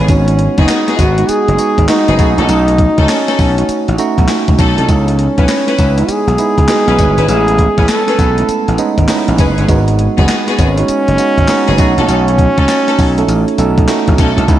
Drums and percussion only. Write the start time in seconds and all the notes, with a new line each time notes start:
0.08 kick, closed hi-hat, tambourine
0.28 closed hi-hat
0.39 closed hi-hat
0.58 kick, closed hi-hat
0.68 snare, clap, closed hi-hat, tambourine
0.88 snare, closed hi-hat
0.99 kick, closed hi-hat, tambourine
1.18 closed hi-hat
1.29 closed hi-hat, tambourine
1.48 closed hi-hat
1.58 closed hi-hat, tambourine
1.78 kick, closed hi-hat
1.88 snare, clap, closed hi-hat, tambourine
2.08 closed hi-hat
2.19 kick, closed hi-hat, tambourine
2.38 closed hi-hat
2.49 closed hi-hat, tambourine
2.68 closed hi-hat
2.78 kick, closed hi-hat
2.98 kick, closed hi-hat
3.08 snare, clap, closed hi-hat, tambourine
3.28 snare, closed hi-hat
3.39 kick, open hi-hat, tambourine
3.58 closed hi-hat
3.69 closed hi-hat, tambourine
3.88 closed hi-hat
3.98 closed hi-hat, tambourine
4.18 kick, closed hi-hat
4.28 snare, clap, closed hi-hat, tambourine
4.48 kick, closed hi-hat
4.58 kick, closed hi-hat, tambourine
4.78 closed hi-hat
4.89 kick, closed hi-hat, tambourine
5.08 closed hi-hat
5.19 closed hi-hat
5.38 kick, closed hi-hat
5.48 snare, clap, closed hi-hat, tambourine
5.68 snare, closed hi-hat
5.78 kick, closed hi-hat, tambourine
5.98 closed hi-hat
6.09 closed hi-hat, tambourine
6.28 closed hi-hat
6.38 closed hi-hat, tambourine
6.58 kick, closed hi-hat
6.68 snare, clap, closed hi-hat, tambourine
6.88 closed hi-hat
6.99 kick, closed hi-hat, tambourine
7.18 closed hi-hat
7.28 closed hi-hat, tambourine
7.48 closed hi-hat
7.58 kick, closed hi-hat
7.78 kick, closed hi-hat
7.88 snare, clap, closed hi-hat, tambourine
8.08 snare, closed hi-hat
8.19 kick, closed hi-hat, tambourine
8.38 closed hi-hat
8.49 closed hi-hat, tambourine
8.68 closed hi-hat
8.78 closed hi-hat, tambourine
8.98 kick, closed hi-hat
9.08 snare, clap, closed hi-hat, tambourine
9.28 closed hi-hat
9.38 kick, closed hi-hat, tambourine
9.58 closed hi-hat
9.68 kick, closed hi-hat, tambourine
9.88 closed hi-hat
9.99 closed hi-hat
10.18 kick, closed hi-hat
10.28 snare, clap, closed hi-hat, tambourine
10.48 snare, closed hi-hat
10.58 kick, closed hi-hat, tambourine
10.78 closed hi-hat
10.88 closed hi-hat, tambourine
11.08 closed hi-hat
11.18 closed hi-hat, tambourine
11.38 kick, closed hi-hat
11.48 snare, clap, closed hi-hat, tambourine
11.68 closed hi-hat
11.78 kick, closed hi-hat, tambourine
11.98 closed hi-hat
12.08 closed hi-hat, tambourine
12.28 closed hi-hat
12.38 kick, closed hi-hat
12.58 kick, closed hi-hat
12.68 snare, clap, closed hi-hat, tambourine
12.88 snare, closed hi-hat
12.99 kick, open hi-hat, tambourine
13.18 closed hi-hat
13.28 closed hi-hat, tambourine
13.48 closed hi-hat
13.58 closed hi-hat, tambourine
13.78 kick, closed hi-hat
13.88 snare, clap, closed hi-hat, tambourine
14.08 kick, closed hi-hat
14.18 kick, closed hi-hat, tambourine
14.38 closed hi-hat
14.48 kick, closed hi-hat, tambourine